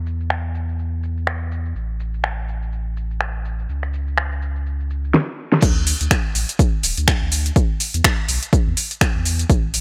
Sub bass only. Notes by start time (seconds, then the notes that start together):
Already playing: E2
1.75 A1
3.69 C#2
5.63 D2
6.01 D2
6.35 A1
6.84 D1
6.98 D2
7.22 D2
7.94 E2
8.29 B1
8.67 E2
9.15 E2
9.50 A1